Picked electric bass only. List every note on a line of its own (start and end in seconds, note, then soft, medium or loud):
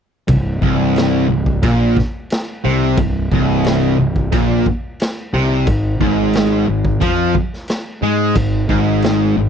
0.28 0.60 C1 medium
0.62 1.26 C1 medium
1.29 1.61 C1 medium
1.63 1.95 A#1 medium
2.65 2.96 C2 medium
2.98 3.29 C1 medium
3.31 3.95 C1 loud
3.99 4.31 C1 medium
4.33 4.64 A#1 medium
5.34 5.65 C2 medium
5.67 5.98 G#1 medium
6.01 6.64 G#1 medium
6.69 7.00 G#1 medium
7.02 7.33 F2 medium
8.02 8.33 G#2 medium
8.36 8.67 G#1 medium
8.69 9.32 G#1 medium
9.36 9.49 G#1 medium